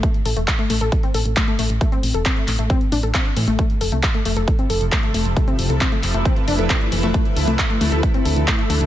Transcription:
0.03 synth pluck A3, kick, closed hi-hat
0.14 closed hi-hat
0.25 fm bass A1, synth pluck A4, open hi-hat
0.37 fm bass E1, synth pluck A3, closed hi-hat
0.48 kick, clap, closed hi-hat
0.59 synth pluck A3, closed hi-hat
0.70 fm bass A1, synth pluck A3, open hi-hat
0.81 fm bass A1, synth pluck A4, closed hi-hat
0.92 kick, closed hi-hat
1.03 synth pluck C4, closed hi-hat
1.14 fm bass A1, synth pluck A4, open hi-hat
1.25 fm bass A1, closed hi-hat
1.37 synth pluck A3, kick, clap, closed hi-hat
1.48 synth pluck A3, closed hi-hat
1.59 fm bass A1, synth pluck A3, open hi-hat
1.70 fm bass A1, closed hi-hat
1.81 synth pluck A3, kick, closed hi-hat
1.92 synth pluck C4, closed hi-hat
2.03 fm bass A1, open hi-hat
2.14 fm bass E1, synth pluck A4
2.25 synth pluck C4, kick, clap, closed hi-hat
2.37 synth pluck A3, closed hi-hat
2.48 fm bass A1, clap, open hi-hat
2.59 fm bass A1, synth pluck A3, closed hi-hat
2.70 synth pluck C4, kick, closed hi-hat
2.81 closed hi-hat
2.92 fm bass A1, synth pluck D4, open hi-hat
3.03 fm bass A1, synth pluck A4, closed hi-hat
3.14 synth pluck C4, kick, clap, closed hi-hat
3.25 closed hi-hat
3.37 fm bass A2, synth pluck E3, open hi-hat
3.48 fm bass A1, synth pluck A3, closed hi-hat
3.59 ambient pad C3 F3 A3 E4 A4, synth pluck A3, kick, closed hi-hat
3.70 closed hi-hat
3.81 fm bass F1, synth pluck A4, open hi-hat
3.92 fm bass C2, synth pluck A3, closed hi-hat
4.03 kick, clap, closed hi-hat
4.14 synth pluck A3, closed hi-hat
4.25 fm bass F1, synth pluck A3, open hi-hat
4.37 fm bass F1, synth pluck A4, closed hi-hat
4.48 kick, closed hi-hat
4.59 synth pluck C4, closed hi-hat
4.70 fm bass F1, synth pluck A4, open hi-hat
4.81 fm bass F1, closed hi-hat
4.92 synth pluck A3, kick, clap, closed hi-hat
5.03 synth pluck A3, closed hi-hat
5.14 fm bass F1, synth pluck A3, open hi-hat
5.25 fm bass F1, closed hi-hat
5.37 synth pluck A3, ambient pad B4, kick, closed hi-hat
5.48 synth pluck C4, closed hi-hat
5.59 fm bass F1, open hi-hat
5.70 fm bass C2, synth pluck A4, closed hi-hat
5.81 synth pluck C4, kick, clap, closed hi-hat
5.92 synth pluck A3, closed hi-hat
6.03 fm bass F1, clap, open hi-hat
6.14 fm bass F1, synth pluck A3, closed hi-hat
6.25 synth pluck C4, kick, closed hi-hat
6.36 closed hi-hat
6.48 fm bass F1, synth pluck D4, open hi-hat
6.59 fm bass F1, synth pluck A4, closed hi-hat
6.70 synth pluck C4, kick, clap, closed hi-hat
6.81 closed hi-hat
6.92 fm bass F1, synth pluck E3, open hi-hat
7.03 fm bass F1, synth pluck A3, closed hi-hat
7.14 ambient pad D3 E3 A4, synth pluck A3, kick, closed hi-hat
7.25 closed hi-hat
7.36 fm bass D2, synth pluck A4, open hi-hat
7.48 fm bass C2, synth pluck A3, closed hi-hat
7.59 kick, clap, closed hi-hat
7.70 synth pluck A3, closed hi-hat
7.81 fm bass D2, synth pluck A3, open hi-hat
7.92 fm bass D2, synth pluck A4
8.03 kick, closed hi-hat
8.14 synth pluck C4, closed hi-hat
8.25 fm bass D2, synth pluck A4, open hi-hat
8.37 fm bass D2, closed hi-hat
8.48 synth pluck A3, kick, clap, closed hi-hat
8.59 synth pluck A3, closed hi-hat
8.70 fm bass D2, synth pluck A3, open hi-hat
8.81 fm bass D2, closed hi-hat

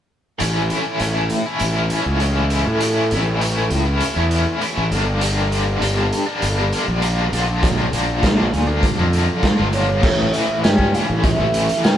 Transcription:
0.39 fingered electric bass A1, overdriven electric guitar A2 E3 A3 C#4 E4, closed hi-hat
0.69 overdriven electric guitar E3 A3 C#4 E4, closed hi-hat
0.99 fingered electric bass A1, overdriven electric guitar A2 E3 A3 C#4 E4, closed hi-hat
1.14 overdriven electric guitar A3 C#4 E4
1.30 muted overdriven electric guitar stroke, closed hi-hat
1.46 overdriven electric guitar A3 C#4 E4
1.60 fingered electric bass A1, closed hi-hat
1.75 overdriven electric guitar A3 C#4 E4
1.90 overdriven electric guitar E3 A3 C#4 E4, closed hi-hat
2.06 fingered electric bass C#2
2.19 overdriven electric guitar A2 E3 A3 C#4 E4, closed hi-hat
2.49 overdriven electric guitar E3 A3 C#4 E4, closed hi-hat
2.64 fingered electric bass A2, overdriven electric guitar A3 C#4 E4
2.79 overdriven electric guitar A2 E3 A3 C#4 E4, closed hi-hat
3.09 fingered electric bass A1, overdriven electric guitar E3 A3 C#4 E4, closed hi-hat
3.40 overdriven electric guitar A2 E3 A3 C#4 E4, closed hi-hat
3.55 overdriven electric guitar A3 C#4 E4
3.70 fingered electric bass C#2, muted overdriven electric guitar stroke, closed hi-hat
3.86 overdriven electric guitar A3 C#4 E4
4.00 closed hi-hat
4.15 fingered electric bass E2, overdriven electric guitar A3 C#4 E4
4.30 overdriven electric guitar E3 A3 C#4 E4, closed hi-hat
4.60 overdriven electric guitar A2 E3 A3 C#4 E4, closed hi-hat
4.77 fingered electric bass A1
4.90 fingered electric bass G1, overdriven electric guitar G2 D3 G3 A#3 D4, closed hi-hat
5.06 overdriven electric guitar G3 A#3 D4
5.21 overdriven electric guitar G2 D3 G3 A#3 D4, closed hi-hat
5.50 overdriven electric guitar D3 G3 A#3 D4, closed hi-hat
5.81 fingered electric bass G1, overdriven electric guitar G2 D3 G3 A#3 D4, closed hi-hat
5.96 overdriven electric guitar G3 A#3 D4
6.12 muted overdriven electric guitar stroke, closed hi-hat
6.26 overdriven electric guitar G3 A#3 D4
6.42 fingered electric bass G1, closed hi-hat
6.57 overdriven electric guitar G3 A#3 D4
6.71 overdriven electric guitar D3 G3 A#3 D4, closed hi-hat
6.88 fingered electric bass A#1
7.02 overdriven electric guitar G2 D3 G3 A#3 D4, closed hi-hat
7.32 fingered electric bass A#1, overdriven electric guitar A#2 D3 F3 A#3 D4, closed hi-hat
7.47 overdriven electric guitar F3 A#3 D4
7.63 overdriven electric guitar A#2 D3 F3 A#3 D4, kick, closed hi-hat
7.92 fingered electric bass A#1, overdriven electric guitar D3 F3 A#3 D4, closed hi-hat
8.21 overdriven electric guitar A#2 D3 F3 A#3 D4, kick, snare, closed hi-hat
8.37 overdriven electric guitar F3 A#3 D4
8.53 fingered electric bass D2, muted overdriven electric guitar stroke, closed hi-hat
8.67 overdriven electric guitar F3 A#3 D4
8.83 kick, closed hi-hat
8.97 fingered electric bass F2, overdriven electric guitar F3 A#3 D4
9.13 overdriven electric guitar D3 F3 A#3 D4, closed hi-hat
9.42 overdriven electric guitar A#2 D3 F3 A#3 D4, kick, snare, closed hi-hat
9.59 fingered electric bass G1
9.72 overdriven electric guitar D3 F3 A#3 D4, flute C#5, closed hi-hat
9.88 overdriven electric guitar F3 A#3 D4
10.03 fingered electric bass A1, overdriven electric guitar A2, kick, crash
10.33 overdriven electric guitar E3, flute E5, closed hi-hat
10.63 fingered electric bass G2, overdriven electric guitar C#4, flute G5, snare, closed hi-hat
10.79 kick
10.94 overdriven electric guitar E3, flute F5, closed hi-hat
11.10 fingered electric bass A1
11.23 overdriven electric guitar A3, flute E5, kick, closed hi-hat
11.40 fingered electric bass A1
11.53 overdriven electric guitar E3, closed hi-hat
11.69 closed hi-hat
11.83 overdriven electric guitar C#4, flute G5, snare, closed hi-hat

